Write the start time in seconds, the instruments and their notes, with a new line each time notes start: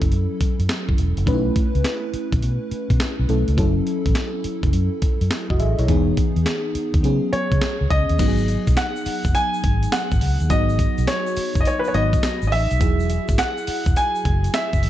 Already playing: fm electric piano F#3 C#4 E4 A4
0.02 fingered electric bass F#1, kick, closed hi-hat
0.11 fingered electric bass F#2, closed hi-hat
0.41 muted fingered electric bass stroke, kick, closed hi-hat
0.59 fingered electric bass F#2, closed hi-hat
0.69 snare, clap, closed hi-hat
0.89 fingered electric bass F#1, kick
0.98 fingered electric bass E1, closed hi-hat
1.17 fingered electric bass F#1, closed hi-hat
1.26 fingered electric bass B1, fm electric piano A3 C#4 D#4 B4, kick, closed hi-hat
1.34 fm electric piano E4
1.56 kick, closed hi-hat
1.75 fingered electric bass C#2, closed hi-hat
1.84 snare, clap, closed hi-hat
2.14 muted fingered electric bass stroke, closed hi-hat
2.32 fingered electric bass B1, kick, closed hi-hat
2.42 fingered electric bass B2, closed hi-hat
2.71 muted fingered electric bass stroke, closed hi-hat
2.90 fingered electric bass B2, kick, closed hi-hat
3.00 snare, clap, closed hi-hat
3.19 fingered electric bass B1
3.29 fingered electric bass B1, fm electric piano A3 C#4 E4 A4, closed hi-hat
3.48 fingered electric bass C#2, closed hi-hat
3.57 fingered electric bass F#1, fm electric piano F#3 C#4 E4 A4, kick, closed hi-hat
3.87 closed hi-hat
4.06 fingered electric bass A1, kick, closed hi-hat
4.15 snare, clap, closed hi-hat
4.44 muted fingered electric bass stroke, closed hi-hat
4.63 fingered electric bass F#1, kick, closed hi-hat
4.73 fingered electric bass F#2, closed hi-hat
5.02 muted fingered electric bass stroke, kick, closed hi-hat
5.21 fingered electric bass F#2, closed hi-hat
5.31 snare, clap, closed hi-hat
5.50 fingered electric bass F#1, fm electric piano F#4 D#5, kick
5.60 fingered electric bass A1, fm electric piano G#4 E5, closed hi-hat
5.79 fingered electric bass B1, fm electric piano E4 C#5, closed hi-hat
5.88 fingered electric bass E1, fm electric piano E3 B3 D#4 G#4, kick, closed hi-hat
6.17 kick, closed hi-hat
6.36 fingered electric bass E2, closed hi-hat
6.46 snare, clap, closed hi-hat
6.75 muted fingered electric bass stroke, closed hi-hat
6.94 fingered electric bass D#2, kick, closed hi-hat
7.03 fingered electric bass C#3, fm electric piano F#3 B3 C#4 G#4, closed hi-hat
7.33 grand piano C#5, muted fingered electric bass stroke, closed hi-hat
7.52 fingered electric bass C#3, kick, closed hi-hat
7.61 snare, clap, closed hi-hat
7.81 fingered electric bass C#2
7.90 fingered electric bass C#2, grand piano D#5, kick, closed hi-hat
8.09 fingered electric bass D#2, closed hi-hat
8.19 fingered electric bass G#1, fm electric piano F#3 B3 D#4 F#4, kick, closed hi-hat, crash, shaker
8.28 fm electric piano G#4
8.38 shaker
8.48 closed hi-hat, shaker
8.67 fingered electric bass B1, kick, closed hi-hat, shaker
8.77 grand piano F#5, snare, clap, closed hi-hat, shaker
8.96 shaker
9.06 muted fingered electric bass stroke, open hi-hat, shaker
9.25 fingered electric bass F#1, kick, closed hi-hat, shaker
9.35 grand piano G#5, closed hi-hat, shaker
9.54 shaker
9.64 fingered electric bass G#1, kick, closed hi-hat
9.83 closed hi-hat, shaker
9.92 grand piano F#5, snare, clap, closed hi-hat, shaker
10.12 fingered electric bass G#1, kick, shaker
10.21 fingered electric bass C#2, open hi-hat
10.40 fingered electric bass D#2, closed hi-hat, shaker
10.49 fingered electric bass G#1, fm electric piano F#3 B3 D#4 F#4, grand piano D#5, kick, closed hi-hat, shaker
10.69 shaker
10.79 kick, closed hi-hat, shaker
10.98 fingered electric bass B1, closed hi-hat, shaker
11.07 grand piano C#5, snare, clap, closed hi-hat, shaker
11.27 shaker
11.37 muted fingered electric bass stroke, open hi-hat, shaker
11.55 fingered electric bass F#1, kick, closed hi-hat, shaker
11.61 grand piano D#5
11.65 grand piano C#5, closed hi-hat, shaker
11.79 grand piano B4
11.84 grand piano C#5, shaker
11.94 fingered electric bass G#1, fm electric piano F#3 B3 D#4 F#4, grand piano D#5, closed hi-hat
12.13 kick, closed hi-hat, shaker
12.23 snare, clap, closed hi-hat, shaker
12.42 fingered electric bass G#1, shaker
12.47 grand piano D#5
12.52 fingered electric bass A1, grand piano E5, open hi-hat
12.71 fingered electric bass B1, closed hi-hat, shaker
12.80 fingered electric bass E1, fm electric piano F#3 E4 F#4 G#4, kick, closed hi-hat, shaker
13.00 shaker
13.10 closed hi-hat, shaker
13.28 fingered electric bass G#1, kick, closed hi-hat, shaker
13.38 grand piano F#5, snare, clap, closed hi-hat, shaker
13.58 shaker
13.67 muted fingered electric bass stroke, open hi-hat, shaker
13.86 fingered electric bass E1, kick, closed hi-hat, shaker
13.96 grand piano G#5, closed hi-hat, shaker
14.15 shaker
14.25 fingered electric bass F#1, kick, closed hi-hat
14.44 closed hi-hat, shaker
14.54 grand piano E5, snare, clap, closed hi-hat, shaker
14.73 fingered electric bass F#1, kick, shaker
14.83 fingered electric bass A1, open hi-hat